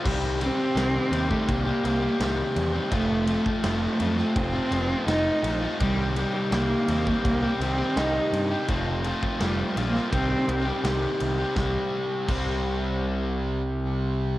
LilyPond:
<<
  \new Staff \with { instrumentName = "Distorted electric guitar" } { \time 4/4 \key c \dorian \tempo 4 = 83 <c ees g c' g'>8 <ees g c' g'>8 <c ees g c' g'>16 <g c' g'>8 <g c' g'>8 <g c' g'>16 <ees g c' g'>16 <g c' g'>16 <c ees g c' g'>16 <g c' g'>8 <g c' g'>16 | <f a c' f'>8 <f a c' f'>8 <f a c' f'>16 <a c' f'>8 <a c' f'>8 <a c' f'>16 <f a c' f'>16 <a c' f'>16 <f a c' f'>16 <a c' f'>8 <a c' f'>16 | <c ees g c' g'>8 <ees g c' g'>8 <c ees g c' g'>16 <g c' g'>8 <g c' g'>8 <g c' g'>16 <ees g c' g'>16 <g c' g'>16 <c ees g c' g'>16 <g c' g'>8 <g c' g'>16 | <f a c' f'>8 <f a c' f'>8 <f a c' f'>16 <a c' f'>8 <a c' f'>16 <c ees g c' g'>16 <g c' g'>16 <ees g c' g'>16 <g c' g'>16 <c ees g c' g'>16 <g c' g'>8 <g c' g'>16 |
<c g c'>16 r8. <c g c'>2. | }
  \new Staff \with { instrumentName = "Overdriven electric guitar" } { \time 4/4 \key c \dorian <c ees g c' g'>8 <ees g c' g'>16 <g c' g'>16 <c ees g c' g'>8 <ees g c' g'>16 <g c' g'>8 <g c' g'>16 <ees g c' g'>16 <g c' g'>16 <c ees g c' g'>8. <g c' g'>16 | <f a c' f'>8 <f a c' f'>16 <a c' f'>16 <f a c' f'>8 <f a c' f'>16 <a c' f'>8 <a c' f'>16 <f a c' f'>16 <a c' f'>16 <f a c' f'>8. <a c' f'>16 | <c ees g c' g'>8 <ees g c' g'>16 <g c' g'>16 <c ees g c' g'>8 <ees g c' g'>16 <g c' g'>8 <g c' g'>16 <ees g c' g'>16 <g c' g'>16 <c ees g c' g'>8. <g c' g'>16 | <f a c' f'>8 <f a c' f'>16 <a c' f'>16 <f a c' f'>8 <f a c' f'>16 <a c' f'>16 <c ees g c' g'>16 <g c' g'>16 <ees g c' g'>16 <g c' g'>16 <c ees g c' g'>8. <g c' g'>16 |
<c g c'>16 r8. <c g c'>2. | }
  \new Staff \with { instrumentName = "Cello" } { \time 4/4 \key c \dorian r8 c'4~ c'16 a16 bes4. r8 | a4 a4 c'4 ees'8. r16 | g8 g8 bes4 bes8 c'8 ees'8. r16 | r4 \tuplet 3/2 { g8. r16 bes8 } c'4 r4 |
r1 | }
  \new Staff \with { instrumentName = "Picked electric bass" } { \clef bass \time 4/4 \key c \dorian c,4 c,8 ees,8 c,8 c,8 c,8 e,8 | f,,4 f,,8 f,8 f,,8 f,,8 f,,8 bes,,8 | c,4 c,8 ees,8 c,8 c,8 c,8 g,8 | f,,4 f,,8 bes,,8 c,8 c,8 c,8 c,8 |
c,8 r8 c,2. | }
  \new DrumStaff \with { instrumentName = "Drums" } \drummode { \time 4/4 <cymc bd>8 cymr8 <cymr sn>8 cymr16 bd16 <bd cymr>8 cymr8 <cymr sn>8 cymr8 | <bd cymr>8 cymr16 bd16 <cymr sn>8 cymr16 sn16 <bd cymr>8 cymr8 <cymr sn>8 cymr8 | <bd cymr>8 cymr8 <cymr sn>8 cymr16 bd16 <bd cymr>8 cymr8 <cymr sn>8 cymr8 | <bd cymr>8 cymr16 bd16 <cymr sn>8 cymr16 sn16 <bd cymr>8 cymr8 <cymr sn>8 cymr8 |
<bd sn>4 <cymc bd>4 r4 r4 | }
>>